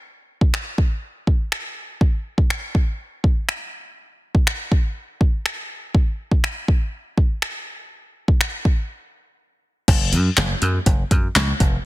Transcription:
0.41 kick
0.54 finger snap
0.78 kick
1.27 kick
1.52 finger snap
2.01 kick
2.38 kick
2.50 finger snap
2.75 kick
3.24 kick
3.49 finger snap
4.35 kick
4.47 finger snap
4.72 kick
5.21 kick
5.46 finger snap
5.95 kick
6.31 kick
6.44 finger snap
6.68 kick
7.18 kick
7.42 finger snap
8.28 kick
8.41 finger snap
8.65 kick
9.88 slap bass F#1, kick, closed hi-hat, crash
10.13 slap bass F#2, closed hi-hat
10.37 slap bass F#1, snare, clap, closed hi-hat
10.62 slap bass F#2, closed hi-hat
10.86 slap bass F#1, kick, closed hi-hat
11.11 slap bass F#2, kick, closed hi-hat
11.35 slap bass C#2, snare, clap, closed hi-hat
11.60 slap bass F1, kick, closed hi-hat

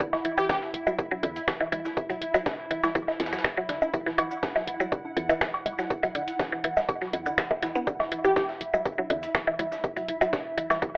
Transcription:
Already playing: synth texture E4
0.00 synth arpeggio sound D3, synth texture E5, kick, tambourine, shaker
0.13 fm bass E1, snare, cowbell, high bongo
0.25 fm bass E1, synth arpeggio sound E3, closed hi-hat, tambourine
0.38 synth arpeggio sound E3, digital synth lead G4, shaker
0.49 synth arpeggio sound E3, digital synth lead G4, kick, snare, tambourine, high bongo, high conga, shaker
0.62 snare
0.74 fm bass E1, closed hi-hat, tambourine
0.87 synth arpeggio sound F#3, high bongo, low conga, shaker
0.99 kick, tambourine, shaker
1.11 synth arpeggio sound F#3, high conga
1.23 fm bass E2, synth arpeggio sound D3, closed hi-hat, tambourine, high bongo
1.36 closed hi-hat, shaker
1.48 synth arpeggio sound E3, finger snap, kick, snare, tambourine, cowbell, shaker
1.61 synth arpeggio sound E3, high bongo
1.72 fm bass E1, synth arpeggio sound E3, closed hi-hat, tambourine, low conga
1.85 snare, shaker
1.97 kick, tambourine, high bongo, shaker
2.10 fm bass E1, synth arpeggio sound F#3, closed hi-hat
2.21 fm bass E1, closed hi-hat, tambourine
2.34 synth arpeggio sound F#3, closed hi-hat, high bongo, shaker
2.46 synth arpeggio sound D3, kick, snare, tambourine, high conga, shaker
2.71 fm bass E1, synth arpeggio sound E3, closed hi-hat, tambourine, high bongo
2.83 synth arpeggio sound E3, snare, cowbell, low conga, shaker
2.95 synth arpeggio sound E3, kick, tambourine, shaker
3.08 snare, high bongo
3.20 fm bass E2, snare, closed hi-hat, tambourine
3.26 snare, tambourine
3.33 synth arpeggio sound F#3, snare, tambourine, shaker
3.39 snare, tambourine
3.44 finger snap, kick, snare, tambourine, high bongo, shaker
3.57 synth arpeggio sound F#3
3.69 fm bass E1, synth arpeggio sound D3, snare, closed hi-hat, tambourine
3.82 high bongo, high conga, shaker
3.94 synth arpeggio sound E3, synth texture F#5, kick, tambourine, shaker
4.06 fm bass E1, synth arpeggio sound E3, snare
4.18 fm bass E1, synth arpeggio sound E3, closed hi-hat, tambourine, cowbell, high bongo
4.31 shaker
4.43 kick, snare, tambourine, high conga, shaker
4.56 synth arpeggio sound F#3, snare, high bongo
4.67 fm bass E1, closed hi-hat, tambourine
4.80 synth arpeggio sound F#3, low conga, shaker
4.92 synth arpeggio sound D3, kick, tambourine, high bongo, shaker
5.05 high conga
5.17 fm bass E2, synth arpeggio sound E3, closed hi-hat, tambourine
5.29 synth arpeggio sound E3, closed hi-hat, high bongo, shaker
5.41 synth arpeggio sound E3, finger snap, kick, snare, tambourine, shaker
5.54 cowbell
5.66 fm bass E1, closed hi-hat, tambourine, high bongo, low conga
5.79 synth arpeggio sound F#3, snare, shaker
5.90 kick, tambourine, shaker
6.03 fm bass E1, synth arpeggio sound F#3, closed hi-hat, high bongo
6.15 fm bass E1, synth arpeggio sound D3, closed hi-hat, tambourine
6.28 closed hi-hat, shaker
6.39 synth arpeggio sound E3, kick, snare, tambourine, high bongo, high conga, shaker
6.52 synth arpeggio sound E3
6.64 fm bass E1, synth arpeggio sound E3, closed hi-hat, tambourine
6.77 snare, high bongo, low conga, shaker
6.89 kick, tambourine, cowbell, shaker
7.01 synth arpeggio sound F#3, snare
7.13 fm bass E2, closed hi-hat, tambourine, high bongo
7.26 synth arpeggio sound D3, shaker
7.38 synth arpeggio sound E3, finger snap, kick, snare, closed hi-hat, tambourine, shaker
7.51 kick, high bongo
7.62 fm bass E1, synth arpeggio sound E3, snare, closed hi-hat, tambourine
7.75 synth arpeggio sound B3, high conga, shaker
7.87 synth arpeggio sound D3, synth texture E4 E5, kick, tambourine, shaker
8.00 fm bass E1, snare, cowbell, high bongo
8.12 fm bass E1, synth arpeggio sound E3, closed hi-hat, tambourine
8.24 synth arpeggio sound E3, digital synth lead G4, shaker
8.36 synth arpeggio sound E3, digital synth lead G4, kick, snare, tambourine, high bongo, high conga, shaker
8.49 snare
8.61 fm bass E1, closed hi-hat, tambourine
8.74 synth arpeggio sound F#3, high bongo, low conga, shaker
8.85 kick, tambourine, shaker
8.98 synth arpeggio sound F#3, high conga
9.10 fm bass E2, synth arpeggio sound D3, closed hi-hat, tambourine, high bongo
9.23 closed hi-hat, shaker
9.35 synth arpeggio sound E3, finger snap, kick, snare, tambourine, cowbell, shaker
9.47 synth arpeggio sound E3, high bongo
9.59 fm bass E1, synth arpeggio sound E3, closed hi-hat, tambourine, low conga
9.72 snare, shaker
9.84 kick, tambourine, high bongo, shaker
9.96 fm bass E1, synth arpeggio sound F#3, closed hi-hat
10.08 fm bass E1, closed hi-hat, tambourine
10.21 synth arpeggio sound F#3, closed hi-hat, high bongo, shaker
10.33 synth arpeggio sound D3, kick, snare, tambourine, high conga, shaker
10.57 fm bass E1, synth arpeggio sound E3, closed hi-hat, tambourine, high bongo
10.70 synth arpeggio sound E3, snare, cowbell, low conga, shaker
10.82 synth arpeggio sound E3, kick, tambourine, shaker

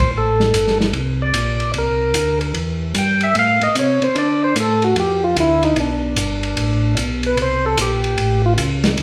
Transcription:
Already playing: tonewheel organ A#1 C5
0.14 tonewheel organ A1
0.18 tonewheel organ A4
0.40 snare
0.54 tonewheel organ G1, hi-hat pedal, ride
0.67 snare
0.81 snare
0.93 tonewheel organ C2, ride
1.22 tonewheel organ D5
1.34 tonewheel organ A#1, hi-hat pedal, ride
1.60 ride
1.73 tonewheel organ C2, ride
1.78 tonewheel organ A#4
2.14 tonewheel organ D2, hi-hat pedal, ride
2.41 ride
2.54 tonewheel organ E2, ride
2.95 tonewheel organ G2 G5, hi-hat pedal, ride
3.21 tonewheel organ E5, ride
3.35 tonewheel organ A2, ride
3.39 tonewheel organ F5
3.61 tonewheel organ A2 D#5, ride
3.75 tonewheel organ C3 C#5, hi-hat pedal, ride
4.02 tonewheel organ C3 C5, ride
4.15 tonewheel organ D3 D5, ride
4.44 tonewheel organ C5
4.56 tonewheel organ A2, hi-hat pedal, ride
4.60 tonewheel organ A4
4.82 tonewheel organ F#4, ride
4.96 tonewheel organ F2 G4, ride
5.24 tonewheel organ F4
5.36 tonewheel organ D2 E4, hi-hat pedal, ride
5.63 tonewheel organ D#4, ride
5.76 tonewheel organ B1 D4, ride
6.16 tonewheel organ G1, hi-hat pedal, ride
6.43 ride
6.57 tonewheel organ A1, ride
6.96 tonewheel organ B1, hi-hat pedal, ride
7.23 tonewheel organ B4, ride
7.37 tonewheel organ C2, ride
7.42 tonewheel organ C5
7.66 tonewheel organ A4
7.77 tonewheel organ A#1 G4, hi-hat pedal, ride
8.04 ride
8.18 tonewheel organ A1, ride
8.46 tonewheel organ F4
8.58 tonewheel organ C#2, hi-hat pedal, ride
8.84 snare, ride
8.97 tonewheel organ D2, ride

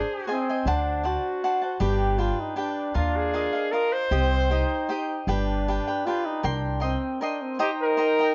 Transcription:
Already playing: trumpet D4 G#4, cavaquinho G#4 C5 G#5
0.27 trumpet C4, cavaquinho G#4 C5 D#5 G#5
0.49 cavaquinho C5 D#5 G#5
0.65 upright bass D2, cavaquinho D4 C5 F#5 A5, trumpet D4
1.03 cavaquinho D4 C5 F#5 A5, trumpet F#4
1.44 cavaquinho D4 C5 F#5 A5
1.61 cavaquinho C5 F#5 A5
1.80 upright bass G1, cavaquinho D4 G4 B4 G5, trumpet G4
2.18 cavaquinho D4 G4 B4 G5, trumpet F4
2.40 trumpet D#4
2.56 cavaquinho D4 G4 B4 G5, trumpet D4
2.94 upright bass D#2, trumpet D4 F4, cavaquinho F4 A#4 F5
3.16 trumpet G#4
3.34 cavaquinho F4 A#4 D#5 F5
3.53 cavaquinho A#4 D#5 F5
3.72 cavaquinho F4 A#4 D#5 F5, trumpet A#4
3.92 trumpet C5
4.11 upright bass C2, trumpet C4, cavaquinho G4 C5 D#5 G5
4.50 trumpet D#4, cavaquinho G4 C5 D#5 G5
4.89 cavaquinho G4 C5 D#5 G5
5.27 upright bass G1, cavaquinho D4 G4 B4 G5, trumpet D4
5.68 cavaquinho D4 G4 B4 G5
5.87 cavaquinho G4 B4 G5
6.06 cavaquinho D4 G4 B4 G5, trumpet F4
6.25 trumpet D#4
6.43 upright bass C2, trumpet D4, cavaquinho A#4 G5 C6
6.80 trumpet C4, cavaquinho A#4 D#5 G5 C6
7.21 trumpet D4, cavaquinho A#4 D#5 G5 C6
7.42 trumpet C4
7.59 trumpet D#4 G4, cavaquinho C5 D#5 G5 A#5
7.83 trumpet A#4
7.97 cavaquinho C5 D#5 G5 A#5
8.19 cavaquinho D#5 G5 A#5

